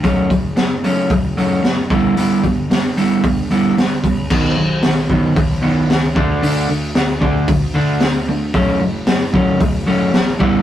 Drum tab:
CC |--------|--------|x-------|--------|
HH |oooooooo|oooooooo|--o-o-o-|o-o-o-o-|
SD |--o---o-|--o---o-|--o---o-|--o---o-|
BD |oo--o--o|-o--o--o|o--oo--o|---oo---|

CC |--------|
HH |o-o-o-o-|
SD |--o---o-|
BD |o--oo--o|